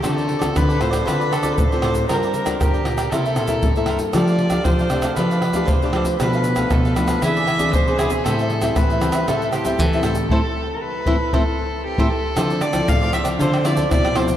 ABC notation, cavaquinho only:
X:1
M:4/4
L:1/16
Q:1/4=117
K:Ddor
V:1 name="Cavaquinho"
[FAcd] [Acd] z [Acd]2 [Acd] [FAcd] [Acd] [FAcd] [Acd] [FAcd] [Acd]2 [Acd] [FAcd] z | [F_Bdg] [Bdg] z [Bdg]2 [Bdg] [FBdg] [Bdg] [EBce] [Bce] [EBce] [Bce]2 [Bce] [EBce] z | [DAdf] [Adf] z [Adf]2 [Adf] [DAdf] [Adf] [DAdf] [Adf] [DAdf] [Adf]2 [Adf] [DAdf] z | [DABf] [ABf] z [ABf]2 [ABf] [DABf] [ABf] [E^GBd] [GBd] [EGBd] [GBd]2 [GBd] [EGBd] z |
[Aceg] [ceg] z [ceg]2 [ceg] [Aceg] [ceg] [Aceg] [ceg] [Aceg] [ceg]2 [ceg] [Aceg] z | [Ace] z4 z [Ace] z [Ace] z4 [Ace] z2 | [FAcd] [Acd] z [Acd]2 [Acd] [FAcd] [Acd] [FAcd] [Acd] [FAcd] [Acd]2 [Acd] [FAcd] z |]